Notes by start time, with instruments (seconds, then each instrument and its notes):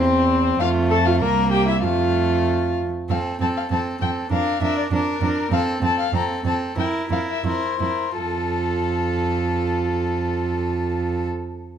Already playing: cello E2, violin C4
0.00 viola C4, violin C5
0.60 cello F2, violin A3 F5, viola F4
0.90 viola A4, violin A5
1.06 viola F4, violin F5
1.20 cello C2, violin A#3 A#5, viola A#4
1.52 viola G4, violin G5
1.68 viola E4, violin E5
1.83 cello F2, violin A3 F5, viola F4
3.09 cello F2, viola C4, violin A4 F5
3.41 cello F2, viola C4, violin A4 A5
3.57 violin F5
3.71 cello F2, viola C4, violin A4 A5
4.01 cello F2, viola C4, violin A4 G5
4.31 cello F2, viola D4, violin A#4 F5
4.61 cello F2, viola D4, violin A#4 E5
4.78 violin D5
4.91 cello F2, viola D4, violin A#4
5.21 cello F2, viola D4, violin A#4
5.51 cello F2, viola C4, violin A4 F5
5.81 cello F2, viola C4, violin A4 A5
5.99 violin F5
6.13 cello F2, viola C4, violin A4 A#5
6.44 cello F2, viola C4, violin A4 A5
6.77 cello F2, viola E4, violin A#4 G5
7.10 cello F2, viola E4, violin A#4 F5
7.30 violin E5
7.44 cello F2, viola E4, violin A#4 C5
7.80 cello F2, viola E4, violin A#4
8.16 cello F2, viola F4, violin A4